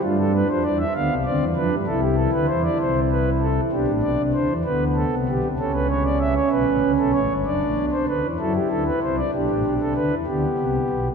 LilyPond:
<<
  \new Staff \with { instrumentName = "Pipe organ" } { \time 12/8 \key g \mixolydian \tempo 4. = 64 << { f'16 a'16 b'16 c''16 d''16 e''16 f''8 d''8 b'8 a'16 g'16 a'16 b'16 c''16 d''16 c''8 b'8 a'8 | g'8 d''8 c''8 b'8 a'8 g'8 a'16 b'16 cis''16 d''16 e''16 cis''16 b'8. a'16 cis''8 | d''8. c''16 b'8 a'16 g'16 a'16 b'16 c''16 d''16 g'8. a'16 b'8 g'4. | } \\ { d'4. b8 c'8 d'8 e'2. | d'4. b4. cis'2. | d'4. e'4. d'4. b4. | } >> }
  \new Staff \with { instrumentName = "Pipe organ" } { \clef bass \time 12/8 \key g \mixolydian <g, g>8. <f, f>16 <e, e>8 <d, d>16 <c, c>16 <d, d>16 <e, e>16 <f, f>16 <g, g>16 <c, c>8. <d, d>16 <e, e>8 <c, c>4. | <b,, b,>16 <a,, a,>16 <b,, b,>16 <c, c>16 <d, d>16 <e, e>16 <d, d>8. <c, c>16 <b,, b,>16 <c, c>16 <cis, cis>4. <b,, b,>16 <a,, a,>16 <cis, cis>16 <b,, b,>16 <a,, a,>16 <g,, g,>16 | <fis,, fis,>16 <a,, a,>16 <b,, b,>16 <c, c>16 <d, d>16 <e, e>16 <fis, fis>8 <d, d>8 <c, c>8 <b,, b,>16 <a,, a,>16 <b,, b,>16 <c, c>16 <d, d>16 <e, e>16 <d, d>8 <c, c>8 <b,, b,>8 | }
>>